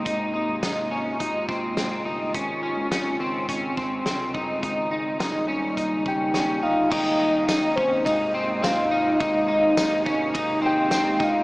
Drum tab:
CC |--------|--------|--------|x-------|
RD |--------|--------|--------|--x-x-x-|
HH |x-x-x-x-|x-x-x-x-|x-x-x-x-|--------|
TB |--------|--------|--------|--x---x-|
SD |--o---o-|--o---o-|--o---o-|--o---o-|
BD |o---oo--|o---oo-o|o---oo--|o--oo---|

CC |--------|
RD |x-x-x-x-|
HH |--------|
TB |--x---x-|
SD |--o---o-|
BD |o--oo--o|